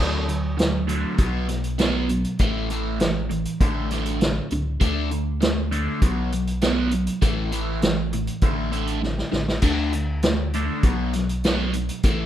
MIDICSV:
0, 0, Header, 1, 4, 480
1, 0, Start_track
1, 0, Key_signature, 2, "major"
1, 0, Tempo, 603015
1, 1906, Time_signature, 4, 2, 24, 8
1, 9758, End_track
2, 0, Start_track
2, 0, Title_t, "Overdriven electric guitar"
2, 0, Program_c, 0, 29
2, 0, Note_on_c, 0, 50, 77
2, 0, Note_on_c, 0, 54, 87
2, 0, Note_on_c, 0, 57, 86
2, 202, Note_off_c, 0, 50, 0
2, 203, Note_off_c, 0, 54, 0
2, 206, Note_off_c, 0, 57, 0
2, 225, Note_on_c, 0, 50, 67
2, 231, Note_on_c, 0, 54, 64
2, 440, Note_off_c, 0, 50, 0
2, 443, Note_off_c, 0, 54, 0
2, 459, Note_on_c, 0, 50, 65
2, 462, Note_on_c, 0, 54, 59
2, 677, Note_off_c, 0, 50, 0
2, 679, Note_off_c, 0, 54, 0
2, 699, Note_on_c, 0, 50, 78
2, 702, Note_on_c, 0, 54, 83
2, 706, Note_on_c, 0, 57, 90
2, 927, Note_off_c, 0, 50, 0
2, 929, Note_off_c, 0, 54, 0
2, 931, Note_off_c, 0, 57, 0
2, 937, Note_on_c, 0, 47, 81
2, 945, Note_on_c, 0, 54, 85
2, 949, Note_on_c, 0, 59, 86
2, 1166, Note_off_c, 0, 47, 0
2, 1171, Note_off_c, 0, 54, 0
2, 1172, Note_off_c, 0, 59, 0
2, 1181, Note_on_c, 0, 47, 69
2, 1188, Note_on_c, 0, 54, 68
2, 1399, Note_off_c, 0, 47, 0
2, 1402, Note_off_c, 0, 54, 0
2, 1417, Note_on_c, 0, 47, 76
2, 1424, Note_on_c, 0, 54, 76
2, 1427, Note_on_c, 0, 59, 79
2, 1647, Note_off_c, 0, 47, 0
2, 1650, Note_off_c, 0, 54, 0
2, 1651, Note_off_c, 0, 59, 0
2, 1665, Note_on_c, 0, 47, 68
2, 1673, Note_on_c, 0, 54, 64
2, 1881, Note_off_c, 0, 47, 0
2, 1885, Note_off_c, 0, 54, 0
2, 1909, Note_on_c, 0, 45, 74
2, 1918, Note_on_c, 0, 57, 93
2, 1919, Note_on_c, 0, 52, 84
2, 2133, Note_off_c, 0, 45, 0
2, 2138, Note_off_c, 0, 52, 0
2, 2138, Note_off_c, 0, 57, 0
2, 2154, Note_on_c, 0, 45, 82
2, 2156, Note_on_c, 0, 52, 81
2, 2158, Note_on_c, 0, 57, 93
2, 2376, Note_off_c, 0, 45, 0
2, 2377, Note_off_c, 0, 52, 0
2, 2378, Note_off_c, 0, 57, 0
2, 2395, Note_on_c, 0, 45, 67
2, 2397, Note_on_c, 0, 52, 80
2, 2607, Note_off_c, 0, 45, 0
2, 2608, Note_off_c, 0, 52, 0
2, 2621, Note_on_c, 0, 45, 69
2, 2628, Note_on_c, 0, 52, 59
2, 2840, Note_off_c, 0, 45, 0
2, 2844, Note_off_c, 0, 52, 0
2, 2870, Note_on_c, 0, 45, 78
2, 2874, Note_on_c, 0, 50, 90
2, 2879, Note_on_c, 0, 57, 85
2, 3094, Note_off_c, 0, 45, 0
2, 3097, Note_off_c, 0, 50, 0
2, 3099, Note_off_c, 0, 57, 0
2, 3114, Note_on_c, 0, 45, 86
2, 3119, Note_on_c, 0, 50, 94
2, 3123, Note_on_c, 0, 57, 109
2, 3332, Note_off_c, 0, 45, 0
2, 3340, Note_off_c, 0, 50, 0
2, 3341, Note_off_c, 0, 57, 0
2, 3341, Note_on_c, 0, 45, 65
2, 3348, Note_on_c, 0, 50, 77
2, 3561, Note_off_c, 0, 45, 0
2, 3564, Note_off_c, 0, 50, 0
2, 3598, Note_on_c, 0, 45, 60
2, 3602, Note_on_c, 0, 50, 68
2, 3810, Note_off_c, 0, 45, 0
2, 3812, Note_off_c, 0, 50, 0
2, 3824, Note_on_c, 0, 50, 85
2, 3827, Note_on_c, 0, 57, 89
2, 3828, Note_on_c, 0, 62, 90
2, 4053, Note_off_c, 0, 50, 0
2, 4054, Note_off_c, 0, 57, 0
2, 4055, Note_off_c, 0, 62, 0
2, 4068, Note_on_c, 0, 50, 67
2, 4071, Note_on_c, 0, 57, 70
2, 4286, Note_off_c, 0, 50, 0
2, 4287, Note_off_c, 0, 57, 0
2, 4303, Note_on_c, 0, 50, 60
2, 4305, Note_on_c, 0, 57, 67
2, 4523, Note_off_c, 0, 50, 0
2, 4524, Note_off_c, 0, 57, 0
2, 4548, Note_on_c, 0, 50, 77
2, 4550, Note_on_c, 0, 57, 86
2, 4555, Note_on_c, 0, 62, 93
2, 4776, Note_off_c, 0, 50, 0
2, 4777, Note_off_c, 0, 57, 0
2, 4779, Note_off_c, 0, 62, 0
2, 4791, Note_on_c, 0, 47, 86
2, 4792, Note_on_c, 0, 54, 90
2, 4798, Note_on_c, 0, 59, 87
2, 5017, Note_off_c, 0, 47, 0
2, 5018, Note_off_c, 0, 54, 0
2, 5021, Note_off_c, 0, 59, 0
2, 5035, Note_on_c, 0, 47, 69
2, 5039, Note_on_c, 0, 54, 73
2, 5250, Note_off_c, 0, 47, 0
2, 5252, Note_off_c, 0, 54, 0
2, 5267, Note_on_c, 0, 47, 70
2, 5269, Note_on_c, 0, 54, 76
2, 5274, Note_on_c, 0, 59, 73
2, 5496, Note_off_c, 0, 47, 0
2, 5497, Note_off_c, 0, 54, 0
2, 5499, Note_off_c, 0, 59, 0
2, 5510, Note_on_c, 0, 47, 56
2, 5514, Note_on_c, 0, 54, 65
2, 5727, Note_off_c, 0, 47, 0
2, 5730, Note_off_c, 0, 54, 0
2, 5744, Note_on_c, 0, 45, 82
2, 5744, Note_on_c, 0, 52, 93
2, 5750, Note_on_c, 0, 57, 80
2, 5974, Note_off_c, 0, 45, 0
2, 5975, Note_off_c, 0, 52, 0
2, 5977, Note_off_c, 0, 57, 0
2, 5984, Note_on_c, 0, 45, 88
2, 5992, Note_on_c, 0, 52, 89
2, 5993, Note_on_c, 0, 57, 84
2, 6214, Note_off_c, 0, 45, 0
2, 6219, Note_off_c, 0, 52, 0
2, 6219, Note_off_c, 0, 57, 0
2, 6226, Note_on_c, 0, 45, 62
2, 6231, Note_on_c, 0, 52, 78
2, 6446, Note_off_c, 0, 45, 0
2, 6448, Note_off_c, 0, 52, 0
2, 6470, Note_on_c, 0, 52, 68
2, 6472, Note_on_c, 0, 45, 65
2, 6688, Note_off_c, 0, 52, 0
2, 6689, Note_off_c, 0, 45, 0
2, 6705, Note_on_c, 0, 45, 74
2, 6709, Note_on_c, 0, 50, 88
2, 6711, Note_on_c, 0, 57, 98
2, 6928, Note_off_c, 0, 45, 0
2, 6929, Note_off_c, 0, 50, 0
2, 6935, Note_off_c, 0, 57, 0
2, 6938, Note_on_c, 0, 45, 83
2, 6938, Note_on_c, 0, 50, 91
2, 6944, Note_on_c, 0, 57, 90
2, 7166, Note_off_c, 0, 50, 0
2, 7167, Note_off_c, 0, 45, 0
2, 7174, Note_off_c, 0, 57, 0
2, 7176, Note_on_c, 0, 50, 64
2, 7177, Note_on_c, 0, 45, 54
2, 7400, Note_off_c, 0, 50, 0
2, 7401, Note_off_c, 0, 45, 0
2, 7415, Note_on_c, 0, 45, 55
2, 7420, Note_on_c, 0, 50, 60
2, 7640, Note_off_c, 0, 45, 0
2, 7642, Note_off_c, 0, 50, 0
2, 7658, Note_on_c, 0, 50, 85
2, 7661, Note_on_c, 0, 57, 83
2, 7666, Note_on_c, 0, 62, 82
2, 7890, Note_off_c, 0, 50, 0
2, 7892, Note_off_c, 0, 57, 0
2, 7894, Note_off_c, 0, 62, 0
2, 7908, Note_on_c, 0, 50, 54
2, 7912, Note_on_c, 0, 57, 66
2, 8125, Note_off_c, 0, 50, 0
2, 8128, Note_off_c, 0, 57, 0
2, 8147, Note_on_c, 0, 50, 62
2, 8150, Note_on_c, 0, 57, 63
2, 8365, Note_off_c, 0, 50, 0
2, 8366, Note_off_c, 0, 57, 0
2, 8389, Note_on_c, 0, 50, 76
2, 8395, Note_on_c, 0, 57, 89
2, 8398, Note_on_c, 0, 62, 85
2, 8615, Note_off_c, 0, 50, 0
2, 8618, Note_off_c, 0, 57, 0
2, 8619, Note_off_c, 0, 62, 0
2, 8627, Note_on_c, 0, 47, 84
2, 8635, Note_on_c, 0, 59, 82
2, 8637, Note_on_c, 0, 54, 89
2, 8853, Note_off_c, 0, 47, 0
2, 8857, Note_off_c, 0, 59, 0
2, 8858, Note_off_c, 0, 54, 0
2, 8869, Note_on_c, 0, 47, 72
2, 8873, Note_on_c, 0, 54, 69
2, 9084, Note_off_c, 0, 47, 0
2, 9086, Note_off_c, 0, 54, 0
2, 9111, Note_on_c, 0, 47, 77
2, 9119, Note_on_c, 0, 54, 75
2, 9119, Note_on_c, 0, 59, 83
2, 9334, Note_off_c, 0, 47, 0
2, 9338, Note_off_c, 0, 54, 0
2, 9338, Note_off_c, 0, 59, 0
2, 9352, Note_on_c, 0, 47, 58
2, 9354, Note_on_c, 0, 54, 65
2, 9564, Note_off_c, 0, 47, 0
2, 9565, Note_off_c, 0, 54, 0
2, 9585, Note_on_c, 0, 45, 79
2, 9590, Note_on_c, 0, 52, 92
2, 9595, Note_on_c, 0, 57, 80
2, 9758, Note_off_c, 0, 45, 0
2, 9758, Note_off_c, 0, 52, 0
2, 9758, Note_off_c, 0, 57, 0
2, 9758, End_track
3, 0, Start_track
3, 0, Title_t, "Sub bass"
3, 0, Program_c, 1, 38
3, 0, Note_on_c, 1, 38, 85
3, 833, Note_off_c, 1, 38, 0
3, 943, Note_on_c, 1, 35, 92
3, 1795, Note_off_c, 1, 35, 0
3, 1909, Note_on_c, 1, 33, 95
3, 2759, Note_off_c, 1, 33, 0
3, 2868, Note_on_c, 1, 33, 107
3, 3507, Note_off_c, 1, 33, 0
3, 3593, Note_on_c, 1, 37, 93
3, 3804, Note_off_c, 1, 37, 0
3, 3830, Note_on_c, 1, 38, 86
3, 4682, Note_off_c, 1, 38, 0
3, 4791, Note_on_c, 1, 35, 97
3, 5643, Note_off_c, 1, 35, 0
3, 5750, Note_on_c, 1, 33, 93
3, 6602, Note_off_c, 1, 33, 0
3, 6706, Note_on_c, 1, 33, 99
3, 7347, Note_off_c, 1, 33, 0
3, 7423, Note_on_c, 1, 33, 85
3, 7640, Note_off_c, 1, 33, 0
3, 7658, Note_on_c, 1, 38, 91
3, 8512, Note_off_c, 1, 38, 0
3, 8625, Note_on_c, 1, 35, 95
3, 9474, Note_off_c, 1, 35, 0
3, 9583, Note_on_c, 1, 33, 84
3, 9758, Note_off_c, 1, 33, 0
3, 9758, End_track
4, 0, Start_track
4, 0, Title_t, "Drums"
4, 229, Note_on_c, 9, 42, 58
4, 309, Note_off_c, 9, 42, 0
4, 468, Note_on_c, 9, 42, 57
4, 477, Note_on_c, 9, 38, 99
4, 548, Note_off_c, 9, 42, 0
4, 556, Note_off_c, 9, 38, 0
4, 707, Note_on_c, 9, 42, 64
4, 787, Note_off_c, 9, 42, 0
4, 941, Note_on_c, 9, 42, 62
4, 945, Note_on_c, 9, 36, 110
4, 1020, Note_off_c, 9, 42, 0
4, 1024, Note_off_c, 9, 36, 0
4, 1183, Note_on_c, 9, 42, 60
4, 1192, Note_on_c, 9, 38, 25
4, 1263, Note_off_c, 9, 42, 0
4, 1271, Note_off_c, 9, 38, 0
4, 1304, Note_on_c, 9, 42, 48
4, 1383, Note_off_c, 9, 42, 0
4, 1421, Note_on_c, 9, 42, 59
4, 1430, Note_on_c, 9, 38, 104
4, 1501, Note_off_c, 9, 42, 0
4, 1510, Note_off_c, 9, 38, 0
4, 1665, Note_on_c, 9, 42, 54
4, 1744, Note_off_c, 9, 42, 0
4, 1787, Note_on_c, 9, 42, 55
4, 1866, Note_off_c, 9, 42, 0
4, 1902, Note_on_c, 9, 42, 65
4, 1908, Note_on_c, 9, 36, 105
4, 1981, Note_off_c, 9, 42, 0
4, 1988, Note_off_c, 9, 36, 0
4, 2148, Note_on_c, 9, 42, 55
4, 2228, Note_off_c, 9, 42, 0
4, 2386, Note_on_c, 9, 42, 55
4, 2395, Note_on_c, 9, 38, 101
4, 2466, Note_off_c, 9, 42, 0
4, 2475, Note_off_c, 9, 38, 0
4, 2631, Note_on_c, 9, 42, 55
4, 2710, Note_off_c, 9, 42, 0
4, 2749, Note_on_c, 9, 42, 57
4, 2828, Note_off_c, 9, 42, 0
4, 2870, Note_on_c, 9, 36, 107
4, 2870, Note_on_c, 9, 42, 56
4, 2949, Note_off_c, 9, 42, 0
4, 2950, Note_off_c, 9, 36, 0
4, 3109, Note_on_c, 9, 42, 51
4, 3118, Note_on_c, 9, 38, 28
4, 3189, Note_off_c, 9, 42, 0
4, 3197, Note_off_c, 9, 38, 0
4, 3228, Note_on_c, 9, 42, 49
4, 3308, Note_off_c, 9, 42, 0
4, 3350, Note_on_c, 9, 42, 51
4, 3358, Note_on_c, 9, 38, 104
4, 3429, Note_off_c, 9, 42, 0
4, 3438, Note_off_c, 9, 38, 0
4, 3587, Note_on_c, 9, 42, 53
4, 3666, Note_off_c, 9, 42, 0
4, 3826, Note_on_c, 9, 42, 59
4, 3830, Note_on_c, 9, 36, 108
4, 3905, Note_off_c, 9, 42, 0
4, 3909, Note_off_c, 9, 36, 0
4, 4069, Note_on_c, 9, 42, 52
4, 4148, Note_off_c, 9, 42, 0
4, 4311, Note_on_c, 9, 42, 61
4, 4319, Note_on_c, 9, 38, 104
4, 4390, Note_off_c, 9, 42, 0
4, 4399, Note_off_c, 9, 38, 0
4, 4555, Note_on_c, 9, 42, 59
4, 4634, Note_off_c, 9, 42, 0
4, 4790, Note_on_c, 9, 42, 63
4, 4791, Note_on_c, 9, 36, 102
4, 4870, Note_off_c, 9, 42, 0
4, 4871, Note_off_c, 9, 36, 0
4, 5033, Note_on_c, 9, 42, 58
4, 5113, Note_off_c, 9, 42, 0
4, 5153, Note_on_c, 9, 42, 54
4, 5232, Note_off_c, 9, 42, 0
4, 5265, Note_on_c, 9, 42, 61
4, 5274, Note_on_c, 9, 38, 97
4, 5345, Note_off_c, 9, 42, 0
4, 5353, Note_off_c, 9, 38, 0
4, 5502, Note_on_c, 9, 42, 57
4, 5582, Note_off_c, 9, 42, 0
4, 5626, Note_on_c, 9, 42, 58
4, 5705, Note_off_c, 9, 42, 0
4, 5746, Note_on_c, 9, 42, 63
4, 5749, Note_on_c, 9, 36, 107
4, 5825, Note_off_c, 9, 42, 0
4, 5828, Note_off_c, 9, 36, 0
4, 5987, Note_on_c, 9, 42, 60
4, 6067, Note_off_c, 9, 42, 0
4, 6226, Note_on_c, 9, 42, 60
4, 6234, Note_on_c, 9, 38, 103
4, 6305, Note_off_c, 9, 42, 0
4, 6314, Note_off_c, 9, 38, 0
4, 6469, Note_on_c, 9, 42, 57
4, 6549, Note_off_c, 9, 42, 0
4, 6584, Note_on_c, 9, 42, 57
4, 6664, Note_off_c, 9, 42, 0
4, 6698, Note_on_c, 9, 42, 59
4, 6704, Note_on_c, 9, 36, 110
4, 6778, Note_off_c, 9, 42, 0
4, 6784, Note_off_c, 9, 36, 0
4, 6946, Note_on_c, 9, 42, 50
4, 7025, Note_off_c, 9, 42, 0
4, 7063, Note_on_c, 9, 42, 46
4, 7143, Note_off_c, 9, 42, 0
4, 7190, Note_on_c, 9, 38, 51
4, 7270, Note_off_c, 9, 38, 0
4, 7309, Note_on_c, 9, 38, 58
4, 7388, Note_off_c, 9, 38, 0
4, 7422, Note_on_c, 9, 38, 82
4, 7502, Note_off_c, 9, 38, 0
4, 7549, Note_on_c, 9, 38, 81
4, 7629, Note_off_c, 9, 38, 0
4, 7656, Note_on_c, 9, 42, 58
4, 7656, Note_on_c, 9, 49, 74
4, 7662, Note_on_c, 9, 36, 107
4, 7736, Note_off_c, 9, 42, 0
4, 7736, Note_off_c, 9, 49, 0
4, 7741, Note_off_c, 9, 36, 0
4, 7902, Note_on_c, 9, 42, 58
4, 7981, Note_off_c, 9, 42, 0
4, 8139, Note_on_c, 9, 42, 60
4, 8148, Note_on_c, 9, 38, 101
4, 8218, Note_off_c, 9, 42, 0
4, 8227, Note_off_c, 9, 38, 0
4, 8386, Note_on_c, 9, 42, 54
4, 8465, Note_off_c, 9, 42, 0
4, 8621, Note_on_c, 9, 42, 64
4, 8624, Note_on_c, 9, 36, 108
4, 8700, Note_off_c, 9, 42, 0
4, 8703, Note_off_c, 9, 36, 0
4, 8861, Note_on_c, 9, 42, 57
4, 8870, Note_on_c, 9, 38, 29
4, 8941, Note_off_c, 9, 42, 0
4, 8950, Note_off_c, 9, 38, 0
4, 8988, Note_on_c, 9, 42, 55
4, 9068, Note_off_c, 9, 42, 0
4, 9104, Note_on_c, 9, 42, 62
4, 9113, Note_on_c, 9, 38, 101
4, 9184, Note_off_c, 9, 42, 0
4, 9193, Note_off_c, 9, 38, 0
4, 9340, Note_on_c, 9, 42, 61
4, 9420, Note_off_c, 9, 42, 0
4, 9463, Note_on_c, 9, 42, 62
4, 9543, Note_off_c, 9, 42, 0
4, 9578, Note_on_c, 9, 42, 65
4, 9583, Note_on_c, 9, 36, 114
4, 9658, Note_off_c, 9, 42, 0
4, 9662, Note_off_c, 9, 36, 0
4, 9758, End_track
0, 0, End_of_file